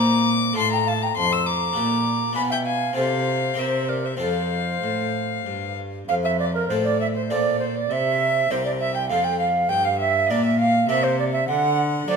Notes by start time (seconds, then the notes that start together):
Already playing: A#2 E4 C5 A#5 D6
0.00 A#2
0.53 A2 A3 F4 A4 A5
0.58 A2 C6
0.72 G5 A#5
0.87 F5 A5
1.02 G5 A#5
1.17 F2 A5 C6
1.31 C6 E6
1.45 A#5 D6
1.73 A#2 D4 F4 G4
1.78 A#2
2.33 B2 D4 F4 B4 G#5 B5
2.37 B2
2.51 E5 G5
2.65 F5 G#5
2.93 C3 C4 F4 A4 C5 F5
2.97 C3
3.54 C4 G4 A#4
3.58 C3 C5 E5
3.89 A#4 D5
4.05 C5 E5
4.17 F2 C4 F4 A4 F5
4.21 F2 C5
4.83 A2
5.46 G2
6.08 F2 F5
6.23 E5
6.39 D5
6.54 A#4
6.68 A2 C4 F4 A4 C5
6.84 D5
7.00 E5
7.15 C5
7.29 A#2 C4 F4 A4 D5
7.59 C5
7.76 D5
7.90 C3 E5
8.50 C2 C4 G4 A#4 C5
8.64 D5
8.80 E5
8.95 G5
9.09 F2 C4 F4 A4 F5
9.24 G5
9.39 F5
9.69 G2 G5
9.84 F5
9.99 E5
10.29 A#2 A#3 D4 A#4 D5
10.43 E5
10.59 F5
10.88 C3 A#3 D4 A#4 E5
11.04 C5
11.19 D5
11.32 E5
11.48 D3 F#5
12.07 F#3 A3 D4 C5 D5